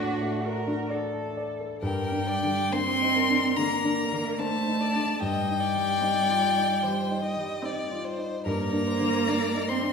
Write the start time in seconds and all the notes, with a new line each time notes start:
Already playing: D2 A3 D4 F#4 A4 D5 A5
0.00 A2
0.22 A3
0.45 A4 A#4
0.67 D4
0.90 A4 D5
1.13 A5
1.37 D5
1.60 A4
1.82 G2 G3 A#4 G5
2.12 D4
2.27 D5
2.43 D3
2.72 A#3 C4 D4 C5 C6
3.02 D#4
3.15 A#4
3.30 D4
3.57 D3 A#3 A#5
3.85 D4
4.12 D3
4.38 A3 A#3 D4 C5 A5
4.67 D#4
4.81 D5
4.95 D4
5.19 G2 G3 D#5 G5
5.48 D#4
5.61 D5
5.75 G3
6.01 C4 D#4
6.30 F4
6.57 D#4
6.83 G3 C5
7.11 D#4
7.23 D#5
7.37 G3
7.63 C4 D#4 D5
7.91 F4
8.04 C5
8.18 D#4
8.45 G2 A#3 A#4 A#5
8.73 D4
8.87 C5
9.00 D3
9.27 D4 D5
9.55 D#4
9.68 C4 C5 C6
9.82 D4